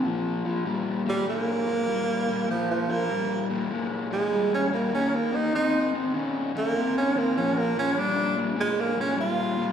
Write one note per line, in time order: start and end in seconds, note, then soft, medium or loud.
0.04 0.41 A#2 medium
0.04 0.41 F3 loud
0.45 0.64 A#2 medium
0.45 0.64 F3 medium
0.66 1.02 A#2 loud
0.66 1.02 G3 loud
1.06 1.25 A#2 medium
1.06 1.25 G3 medium
1.06 1.28 G3 loud
1.27 1.63 A#2 medium
1.27 1.64 G#3 medium
1.27 2.46 A#3 loud
1.67 1.86 A#2 medium
1.67 1.86 G#3 medium
1.87 2.24 A#2 medium
1.87 2.24 G3 medium
2.28 2.47 A#2 medium
2.28 2.47 G3 medium
2.48 2.85 A#2 medium
2.48 2.85 F3 loud
2.48 2.70 F3 medium
2.71 2.93 F3 medium
2.89 3.08 A#2 medium
2.89 3.08 F3 medium
2.89 3.50 A#3 loud
3.10 3.46 A#2 medium
3.10 3.46 G3 loud
3.50 3.68 A#2 medium
3.50 3.69 G3 medium
3.71 4.07 A#2 medium
3.71 4.07 G#3 medium
4.11 4.30 A#2 medium
4.11 4.30 G#3 medium
4.11 4.52 G#3 loud
4.31 4.68 A#2 medium
4.31 4.68 G3 medium
4.54 4.73 C#4 medium
4.72 4.91 A#2 medium
4.72 4.91 G3 medium
4.72 4.93 A#3 medium
4.92 5.29 D#3 medium
4.92 5.29 A#3 medium
4.92 5.17 C#4 medium
5.15 5.37 A#3 medium
5.32 5.51 D#3 medium
5.32 5.52 A#3 medium
5.32 5.54 D#4 medium
5.54 5.90 D#3 medium
5.54 5.90 C4 loud
5.54 5.93 D#4 loud
5.94 6.12 D#3 medium
5.94 6.13 C4 medium
6.14 6.51 D#3 medium
6.14 6.51 C#4 loud
6.55 6.73 D#3 medium
6.55 6.96 A#3 loud
6.55 6.73 C#4 medium
6.75 7.12 D#3 medium
6.75 7.12 C4 medium
6.98 7.20 C#4 medium
7.16 7.34 D#3 medium
7.16 7.37 A#3 medium
7.16 7.34 C4 medium
7.36 7.72 A#2 medium
7.36 7.72 F3 loud
7.36 7.59 C#4 medium
7.58 7.77 A#3 loud
7.76 7.94 A#2 medium
7.76 7.95 F3 medium
7.76 8.00 C#4 loud
7.97 8.33 A#2 medium
7.97 8.34 G3 loud
7.97 8.37 D4 loud
8.37 8.55 A#2 medium
8.37 8.56 G3 medium
8.56 8.93 A#2 loud
8.56 8.94 G#3 loud
8.60 8.82 G#3 loud
8.81 8.99 A#3 loud
8.97 9.16 A#2 medium
8.97 9.16 G#3 medium
8.97 9.19 C#4 medium
9.17 9.54 A#2 medium
9.17 9.54 G3 medium
9.17 9.72 F4 loud
9.57 9.72 A#2 medium
9.57 9.72 G3 medium